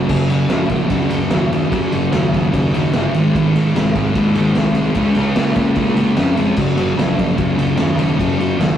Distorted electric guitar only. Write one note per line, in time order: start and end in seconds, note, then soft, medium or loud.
0.10 0.28 F#2 medium
0.10 0.29 C#3 medium
0.10 0.30 F#3 loud
0.28 0.49 F#2 medium
0.28 0.48 C#3 loud
0.28 0.51 F#3 medium
0.49 0.69 F#2 medium
0.49 0.70 C#3 loud
0.49 0.71 F#3 loud
0.70 0.88 F#2 medium
0.70 0.89 C#3 loud
0.70 0.90 F#3 loud
0.89 1.09 F#2 medium
0.89 1.10 C#3 loud
0.89 1.11 F#3 loud
1.10 1.30 F#2 medium
1.10 1.31 C#3 medium
1.10 1.32 F#3 loud
1.31 1.50 F#2 medium
1.31 1.51 C#3 loud
1.31 1.51 F#3 loud
1.51 1.71 F#2 medium
1.51 1.71 C#3 medium
1.51 1.72 F#3 medium
1.72 1.91 F#2 medium
1.72 1.92 C#3 medium
1.72 1.93 F#3 loud
1.92 2.11 F#2 medium
1.92 2.11 C#3 medium
1.92 2.12 F#3 medium
2.12 2.31 F#2 loud
2.12 2.31 C#3 loud
2.12 2.32 F#3 loud
2.32 2.50 F#2 medium
2.32 2.51 C#3 medium
2.32 2.51 F#3 medium
2.52 2.73 F#2 loud
2.52 2.73 C#3 loud
2.52 2.74 F#3 loud
2.74 2.94 F#2 medium
2.74 2.94 C#3 medium
2.74 2.94 F#3 loud
2.95 3.14 F#2 loud
2.95 3.14 C#3 loud
2.95 3.14 F#3 loud
3.16 3.34 G#2 loud
3.16 3.36 D#3 loud
3.16 3.36 G#3 loud
3.36 3.54 G#2 medium
3.36 3.54 D#3 loud
3.36 3.56 G#3 loud
3.55 3.75 G#2 loud
3.55 3.75 D#3 loud
3.55 3.76 G#3 medium
3.76 3.93 G#2 medium
3.76 3.93 D#3 loud
3.76 3.96 G#3 loud
3.94 4.14 G#2 medium
3.94 4.15 D#3 loud
3.94 4.16 G#3 medium
4.16 4.36 G#2 loud
4.16 4.37 D#3 loud
4.16 4.37 G#3 loud
4.37 4.56 G#2 medium
4.37 4.56 D#3 medium
4.37 4.57 G#3 medium
4.57 4.76 G#2 loud
4.57 4.76 D#3 loud
4.57 4.77 G#3 loud
4.77 4.96 G#2 medium
4.77 4.96 D#3 medium
4.77 4.96 G#3 loud
4.96 5.15 C#3 medium
4.96 5.16 G#3 loud
4.96 5.17 C#4 loud
5.16 5.36 C#3 medium
5.16 5.37 G#3 medium
5.16 5.39 C#4 medium
5.37 5.54 C#3 loud
5.37 5.55 G#3 loud
5.37 5.57 C#4 loud
5.55 5.76 C#3 medium
5.55 5.76 G#3 medium
5.55 5.78 C#4 medium
5.77 5.94 C#3 loud
5.77 5.94 G#3 loud
5.77 5.97 C#4 loud
5.95 6.15 C#3 medium
5.95 6.16 G#3 medium
5.95 6.18 C#4 medium
6.17 6.35 C#3 loud
6.17 6.36 G#3 medium
6.17 6.38 C#4 loud
6.36 6.56 C#3 medium
6.36 6.56 G#3 medium
6.36 8.78 C#4 medium
6.56 6.75 F#2 medium
6.56 6.75 C#3 medium
6.56 6.77 F#3 medium
6.76 6.94 F#2 medium
6.76 6.95 C#3 medium
6.76 6.96 F#3 loud
6.95 7.15 F#2 loud
6.95 7.16 C#3 loud
6.95 7.17 F#3 loud
7.17 7.36 F#2 medium
7.17 7.37 C#3 medium
7.17 7.37 F#3 medium
7.37 7.55 F#2 loud
7.37 7.57 C#3 loud
7.37 7.57 F#3 loud
7.56 7.75 F#2 medium
7.56 7.76 C#3 medium
7.56 7.76 F#3 medium
7.76 7.95 F#2 loud
7.76 7.95 C#3 loud
7.76 7.96 F#3 loud
7.96 8.17 F#2 medium
7.96 8.18 C#3 medium
7.96 8.18 F#3 medium
8.18 8.37 F#2 loud
8.18 8.38 C#3 loud
8.18 8.39 F#3 loud
8.38 8.56 F#2 medium
8.38 8.57 C#3 medium
8.38 8.58 F#3 loud
8.57 8.77 F#2 loud
8.57 8.78 C#3 loud
8.57 8.78 F#3 loud